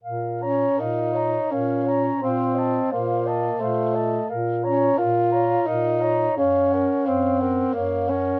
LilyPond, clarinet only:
\new Staff \with { instrumentName = "Clarinet" } { \time 3/4 \key bes \minor \tempo 4 = 86 f''8 bes''8 f''8 bes''8 f''8 bes''8 | f''8 a''8 f''8 a''8 f''8 a''8 | f''8 bes''8 f''8 bes''8 f''8 bes''8 | f''8 ges''8 f''8 ges''8 f''8 ges''8 | }